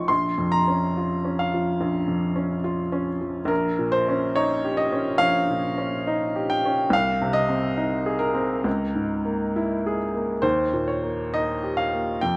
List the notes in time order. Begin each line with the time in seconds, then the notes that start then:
Already playing: A1 A2 F3 D#4 F4 C6 C#6
0.08 A#1 C6
0.38 F2
0.52 A#5
0.68 C#4
0.97 F4
1.25 C#4
1.39 F5
1.54 F3
1.81 A#1
2.08 F2
2.36 C#4
2.64 F4
2.92 C#4
3.21 F3
3.45 A#1 A#4
3.79 A#2
3.92 C5
4.08 C#4
4.36 D#4 C#5
4.65 G4
4.77 D#5
4.92 C#4
5.18 A#1 F5
5.49 A#2
5.78 C#4
6.07 D#4
6.36 G4
6.50 G5
6.65 C#4
6.90 C2 F5
7.22 C3
7.33 D#5
7.49 C4
7.77 D#4
8.06 G#4
8.19 A#4
8.35 C4
8.64 C#2
8.95 G#2
9.25 A#3
9.56 E4
9.87 G#4
10.15 A#3
10.42 D#2 C5
10.73 A#2
10.88 C#5
11.03 A#3
11.34 D#4 D#5
11.64 G4
11.77 F5
11.93 A#3
12.21 F2 G5